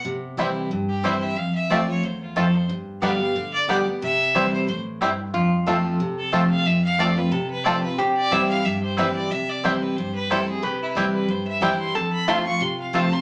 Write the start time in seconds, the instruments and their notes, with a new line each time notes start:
0.05 steel-string acoustic guitar C3
0.37 steel-string acoustic guitar E3 G3 C4 E4, five-string banjo G3 C4 E4, mandolin C4 E4 C5 G5
0.71 steel-string acoustic guitar G2
0.89 fiddle G4
1.03 steel-string acoustic guitar E3 G3 C4 E4, five-string banjo G3 C4 E4, mandolin C4 E4 C5 G5, fiddle C5
1.23 fiddle E5
1.36 steel-string acoustic guitar F2, fiddle F5
1.55 fiddle E5
1.70 steel-string acoustic guitar F3 A3 C4 F4, five-string banjo A3 C4 F4, mandolin C4 F4 C5 A5, fiddle D5
1.87 steel-string acoustic guitar C4 F4, fiddle C#5
2.03 steel-string acoustic guitar E2, fiddle C5
2.23 fiddle F4
2.36 steel-string acoustic guitar F2, five-string banjo A3 C4 F4, mandolin C4 F4 C5 A5, fiddle A4
2.55 fiddle C5
2.69 steel-string acoustic guitar G2
3.02 steel-string acoustic guitar D3 G3 B3 G4, five-string banjo G3 B3 D4, mandolin B3 G4 D5 G5, fiddle F5
3.20 steel-string acoustic guitar B3 G4
3.36 steel-string acoustic guitar D3
3.54 fiddle D5
3.68 steel-string acoustic guitar D3 G3 B3 G4, five-string banjo G3 B3 D4, mandolin B3 G4 D5 G5, fiddle D5
3.86 steel-string acoustic guitar B3 G4
4.02 steel-string acoustic guitar C3, fiddle E5
4.34 steel-string acoustic guitar E3 G3 C4 E4, five-string banjo G3 C4 E4, mandolin C4 E4 C5 G5
4.53 fiddle C5
4.67 steel-string acoustic guitar A2, fiddle C5
5.01 steel-string acoustic guitar G2, five-string banjo G3 C4 E4, mandolin C4 E4 C5 G5
5.34 steel-string acoustic guitar F2, resonator guitar played with a steel bar F4
5.66 steel-string acoustic guitar F3 A3 C4 F4, five-string banjo A3 C4 F4, mandolin C4 F4 C5 A5, resonator guitar played with a steel bar A4
6.00 steel-string acoustic guitar C3
6.18 fiddle A4
6.32 steel-string acoustic guitar F3 A3 C4 F4, five-string banjo A3 C4 F4, mandolin C4 F4 C5 A5, fiddle C5
6.50 fiddle F5
6.65 steel-string acoustic guitar F2, fiddle E5
6.84 fiddle F5
6.99 steel-string acoustic guitar F3 A3 C4 F4, five-string banjo A3 C4 F4, mandolin C4 F4 C5 A5, fiddle D5
7.16 steel-string acoustic guitar C4 F4, fiddle B4
7.31 steel-string acoustic guitar C3, fiddle A4
7.50 fiddle B4
7.64 steel-string acoustic guitar F3 A3 C4 F4, five-string banjo A3 C4 F4, mandolin C4 F4 C5 A5, fiddle D5
7.82 steel-string acoustic guitar C4 F4, fiddle B4
7.98 steel-string acoustic guitar C3, resonator guitar played with a steel bar G4, fiddle C5
8.17 fiddle D5
8.31 steel-string acoustic guitar E3 G3 C4 E4, five-string banjo G3 C4 E4, mandolin C4 E4 C5 G5, fiddle E5
8.49 fiddle F5
8.65 steel-string acoustic guitar G2, fiddle E5
8.83 fiddle C5
8.97 steel-string acoustic guitar E3 G3 C4 E4, five-string banjo G3 C4 E4, mandolin C4 E4 C5 G5, fiddle B4
9.15 fiddle D5
9.31 steel-string acoustic guitar C3, fiddle E5
9.49 fiddle D5
9.63 steel-string acoustic guitar E3 G3 C4 E4, five-string banjo G3 C4 E4, mandolin C4 E4 C5 G5, fiddle C5
9.82 fiddle B4
9.97 steel-string acoustic guitar G2, fiddle C5
10.15 fiddle B4
10.30 steel-string acoustic guitar E3 G3 C4 E4, five-string banjo G3 C4 E4, mandolin C4 E4 C5 G5, fiddle A4
10.48 steel-string acoustic guitar C4 E4, fiddle G#4
10.62 steel-string acoustic guitar C3, fiddle G4, resonator guitar played with a steel bar B4
10.82 fiddle E4
10.95 steel-string acoustic guitar E3 G3 C4 E4, five-string banjo G3 C4 E4, mandolin C4 E4 C5 G5
11.14 fiddle B4
11.28 steel-string acoustic guitar G2, fiddle C5
11.47 fiddle E5
11.61 steel-string acoustic guitar E3 G3 C4 E4, five-string banjo G3 C4 E4, mandolin C4 E4 C5 G5, fiddle G5
11.80 fiddle C6
11.95 steel-string acoustic guitar F2, resonator guitar played with a steel bar A4, fiddle A5
12.12 fiddle B5
12.27 steel-string acoustic guitar F3 A3 C4 F4, five-string banjo A3 C4 F4, mandolin C4 F4 C5 A5, resonator guitar played with a steel bar F4, fiddle C6
12.45 steel-string acoustic guitar C4 F4, fiddle C#6
12.60 steel-string acoustic guitar C3, fiddle C6
12.80 fiddle F5
12.93 steel-string acoustic guitar F3 A3 C4 F4, five-string banjo A3 C4 F4, mandolin C4 F4 C5 A5, fiddle A5
13.11 steel-string acoustic guitar C4 F4, fiddle C6